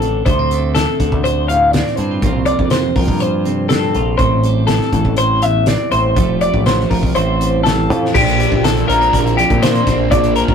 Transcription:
Already playing: clean electric guitar A3 C4 A4
0.02 picked electric bass A1, clean electric guitar D3, closed hi-hat
0.26 picked electric bass D2, clean electric guitar D2 A3 C5, kick, closed hi-hat
0.39 clean electric guitar C4
0.51 clean electric guitar A3, closed hi-hat
0.75 clean electric guitar A4, snare, closed hi-hat
1.00 picked electric bass D2, clean electric guitar D3, kick, closed hi-hat
1.12 picked electric bass D2, kick
1.24 clean electric guitar C5, closed hi-hat
1.48 clean electric guitar A2 F5, closed hi-hat
1.72 clean electric guitar D5, snare, closed hi-hat
1.76 clean electric guitar C4
1.86 snare
1.96 picked electric bass G2, clean electric guitar D4 C5, closed hi-hat
2.11 clean electric guitar F4
2.22 picked electric bass C2, clean electric guitar C3 F3 A#3 C4 F4, kick, closed hi-hat
2.46 clean electric guitar A#3 D5, closed hi-hat
2.59 picked electric bass F2, kick
2.70 clean electric guitar C5, snare, closed hi-hat
2.96 picked electric bass C2, clean electric guitar F3 A#4, kick, open hi-hat
3.08 picked electric bass G2, kick
3.20 clean electric guitar C5, closed hi-hat
3.45 clean electric guitar C3, closed hi-hat
3.69 clean electric guitar C4 A4, snare, closed hi-hat
3.95 picked electric bass A#1, clean electric guitar F4, closed hi-hat
4.18 picked electric bass A1, clean electric guitar A2 C4 C5, kick, closed hi-hat
4.43 clean electric guitar G3, closed hi-hat
4.67 clean electric guitar A4, snare, closed hi-hat
4.81 snare
4.93 picked electric bass A1, clean electric guitar E3, kick, closed hi-hat
5.05 picked electric bass A1, kick
5.17 clean electric guitar C5, closed hi-hat
5.42 clean electric guitar E2 E5, closed hi-hat
5.66 clean electric guitar C4 D5, snare, closed hi-hat
5.92 picked electric bass A1, clean electric guitar E4 C5, closed hi-hat
6.15 picked electric bass F1, clean electric guitar F2 F3 G3 A3 E4, kick, closed hi-hat
6.41 clean electric guitar G3 D5, closed hi-hat
6.54 picked electric bass A1, kick
6.66 clean electric guitar C5, snare, closed hi-hat
6.80 snare
6.89 picked electric bass F1, clean electric guitar F3 A#4, kick, open hi-hat
7.03 picked electric bass C2, kick
7.15 picked electric bass A1, clean electric guitar A2 E3 G3 C4 E4 C5, closed hi-hat
7.40 clean electric guitar G3, closed hi-hat
7.64 clean electric guitar G2 A4, snare, closed hi-hat
7.90 picked electric bass F2, clean electric guitar A2, closed hi-hat
8.05 snare
8.14 picked electric bass A#1, clean electric guitar A#2 G4, overdriven electric guitar A#2 F3 A#3 D4, kick, crash
8.28 closed hi-hat
8.40 clean electric guitar D4, closed hi-hat
8.52 picked electric bass A#1, kick
8.64 clean electric guitar A4, snare, closed hi-hat
8.77 closed hi-hat
8.88 picked electric bass A#1, overdriven electric guitar A#2 F3 A#3 D4, clean electric guitar D3 A3 A#4, closed hi-hat
9.01 clean electric guitar C4, closed hi-hat
9.13 picked electric bass A#1, clean electric guitar D4, kick, closed hi-hat
9.25 clean electric guitar E4, closed hi-hat
9.37 clean electric guitar F2 C4 G4, closed hi-hat
9.50 picked electric bass A#2, kick, closed hi-hat
9.62 overdriven electric guitar A#2 F3 A#3 D4, clean electric guitar D4 C5, snare, closed hi-hat
9.75 closed hi-hat
9.87 picked electric bass A#1, clean electric guitar C4, kick, snare, closed hi-hat
10.10 picked electric bass A#1, overdriven electric guitar A#2 F3 A#3 D4, clean electric guitar A#2 D5, kick, closed hi-hat
10.24 closed hi-hat
10.36 clean electric guitar D4 A#4, closed hi-hat
10.48 picked electric bass G1, kick

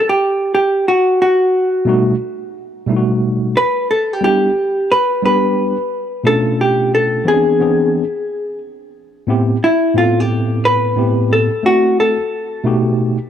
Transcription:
0.09 hollow-body jazz guitar G4
0.55 hollow-body jazz guitar G4
0.88 hollow-body jazz guitar F#4
1.22 hollow-body jazz guitar F#4
1.85 tine electric piano B2 G3 A3 D#4 F#4
2.86 tine electric piano B2 G3 A3 D#4 E4
2.97 tine electric piano F#4
3.57 hollow-body jazz guitar B4
3.91 hollow-body jazz guitar A4
4.13 hollow-body jazz guitar G4
4.21 tine electric piano G3 B3 D4 E4, hollow-body jazz guitar G4
4.92 hollow-body jazz guitar B4
5.22 tine electric piano G3 B3 D4 G4, hollow-body jazz guitar B4
6.24 tine electric piano B2 A3 C#4 D4 F4, hollow-body jazz guitar A4
6.61 hollow-body jazz guitar G4
6.95 hollow-body jazz guitar A4
7.25 tine electric piano E3 B3 C4 C#4 G#4, hollow-body jazz guitar G#4
7.33 tine electric piano D4
7.59 tine electric piano E3 B3 C4 D4 G#4
9.27 tine electric piano A2 B3 C4 E4 G4
9.64 hollow-body jazz guitar E4
9.94 tine electric piano A2 B3 C4 E4 A4, hollow-body jazz guitar F4
10.20 hollow-body jazz guitar G4
10.65 hollow-body jazz guitar B4
10.96 tine electric piano A2 B3 C4 E4 G4
11.33 hollow-body jazz guitar A4
11.63 tine electric piano A3 C4 E4 F#4, hollow-body jazz guitar F#4
12.00 hollow-body jazz guitar A4
12.64 tine electric piano B2 A3 D#4 F#4 G4

